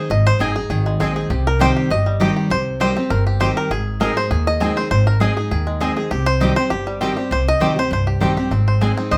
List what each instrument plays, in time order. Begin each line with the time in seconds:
Already playing: steel-string acoustic guitar D#4, five-string banjo G#4 C5
0.10 upright bass G#1, steel-string acoustic guitar G#2, five-string banjo D#5
0.27 five-string banjo C5
0.39 upright bass G1, steel-string acoustic guitar G#3 C4 D#4 G#4, mandolin C4 G#4 D#5 G#5, five-string banjo G#4
0.56 steel-string acoustic guitar D#4 G#4, five-string banjo G#4
0.70 upright bass G#1, steel-string acoustic guitar D#3, five-string banjo G#4
0.86 five-string banjo G#3
1.00 upright bass A#1, steel-string acoustic guitar G#3 C4 D#4 G#4, five-string banjo C4, mandolin C4 G#4 D#5 G#5
1.16 steel-string acoustic guitar D#4 G#4, five-string banjo G#4
1.30 upright bass C2, steel-string acoustic guitar C3, five-string banjo G4
1.47 five-string banjo A#4
1.59 steel-string acoustic guitar D#3 G3 C4 G4, mandolin C4 G4 D#5 G5, five-string banjo C5
1.76 five-string banjo G4
1.90 upright bass G1, steel-string acoustic guitar G2, five-string banjo D#5
2.06 five-string banjo G3
2.20 steel-string acoustic guitar D#3 G3 C4 G4, mandolin C4 G4 D#5 G5, five-string banjo G4
2.36 five-string banjo G4
2.50 upright bass C2, steel-string acoustic guitar C3, five-string banjo C5
2.80 steel-string acoustic guitar D#3 G3 C4 G4, mandolin C4 G4 D#5 G5, five-string banjo C5
2.96 five-string banjo C4, steel-string acoustic guitar C4 G4
3.10 upright bass G1, steel-string acoustic guitar G2, five-string banjo A#4
3.27 five-string banjo G4
3.40 steel-string acoustic guitar D#3 G3 C4 G4, mandolin C4 G4 D#5 G5, five-string banjo C5
3.57 five-string banjo A#4
3.70 upright bass G#1, steel-string acoustic guitar G#2, five-string banjo G#4
4.00 steel-string acoustic guitar G#3 C4 D#4 G#4, mandolin C4 G#4 D#5 G#5, five-string banjo A#4
4.16 steel-string acoustic guitar D#4 G#4, five-string banjo C5
4.31 upright bass D#2, steel-string acoustic guitar D#3, five-string banjo G#4
4.47 five-string banjo D#5
4.60 steel-string acoustic guitar G#3 C4 D#4 G#4, mandolin C4 G#4 D#5 G#5, five-string banjo C4
4.76 steel-string acoustic guitar D#4 G#4, five-string banjo C5
4.91 upright bass G#1, steel-string acoustic guitar G#2, five-string banjo C5
5.07 five-string banjo A#4
5.20 steel-string acoustic guitar G#3 C4 D#4 G#4, mandolin C4 G#4 D#5 G#5, five-string banjo G#4
5.36 steel-string acoustic guitar D#4 G#4, five-string banjo G#4
5.51 upright bass D#2, steel-string acoustic guitar D#3, five-string banjo G#4
5.67 five-string banjo G#3
5.80 steel-string acoustic guitar G#3 C4 D#4 G#4, mandolin C4 G#4 D#5 G#5, five-string banjo C4
5.96 steel-string acoustic guitar D#4 G#4, five-string banjo G#4
6.11 upright bass C2, steel-string acoustic guitar C3, five-string banjo G4
6.26 five-string banjo C5
6.40 steel-string acoustic guitar D#3 G3 C4 G4, mandolin C4 G4 D#5 G5, five-string banjo G4
6.56 steel-string acoustic guitar C4 G4, five-string banjo C5
6.70 upright bass G1, steel-string acoustic guitar G2, five-string banjo G4
6.87 five-string banjo G3
7.01 steel-string acoustic guitar D#3 G3 C4 G4, mandolin C4 G4 D#5 G5, five-string banjo C4
7.16 steel-string acoustic guitar C4 G4, five-string banjo G4
7.31 upright bass C2, steel-string acoustic guitar C3, five-string banjo C5
7.48 five-string banjo D#5
7.60 upright bass D2, steel-string acoustic guitar D#3 G3 C4 G4, mandolin C4 G4 D#5 G5, five-string banjo C5
7.76 steel-string acoustic guitar C4 G4, five-string banjo C5
7.91 upright bass C2, steel-string acoustic guitar G2, five-string banjo C5
8.07 five-string banjo G4
8.20 upright bass A#1, steel-string acoustic guitar D#3 G3 C4 G4, mandolin C4 G4 D#5 G5, five-string banjo C4
8.37 steel-string acoustic guitar C4 G4, five-string banjo G4
8.51 upright bass G#1, steel-string acoustic guitar G#2, five-string banjo C4
8.68 five-string banjo C5
8.81 steel-string acoustic guitar G#3 C4 D#4 G#4, mandolin C4 G#4 D#5 G#5, five-string banjo G#4
8.97 five-string banjo C4, steel-string acoustic guitar D#4 G#4
9.11 upright bass D#2, steel-string acoustic guitar D#3, five-string banjo C5, resonator guitar played with a steel bar D#5